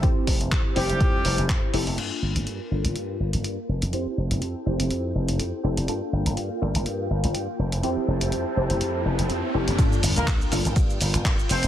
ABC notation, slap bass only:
X:1
M:4/4
L:1/16
Q:"Swing 16ths" 1/4=123
K:Gdor
V:1 name="Slap bass" clef=bass
z2 F,,, F,,, z2 F,,, F,,, z2 F,,, F,,, z2 F,,, F,,, | G,, z G,,, G,,, G,, z G,,, G,,, G,,2 G,,, G,,, G,, z F,,, F,,, | F,, z F,,, F,,, F,, z F,,, F,,, F,,2 F,,, F,,, F,, z F,,, F,,, | G,, z G,,, G,,, G,, z G,,, G,,, G,,2 G,,, G,,, G,, z F,,, F,,, |
F,, z F,,, F,,, F,, z F,,, F,,, F,,2 F,,, F,,, F,, z F,,, F,,, | G,, z G,,, G,,, G,, z G,,, G,,, G,,2 G,,, G,,, G,, z F,,, F,,, |]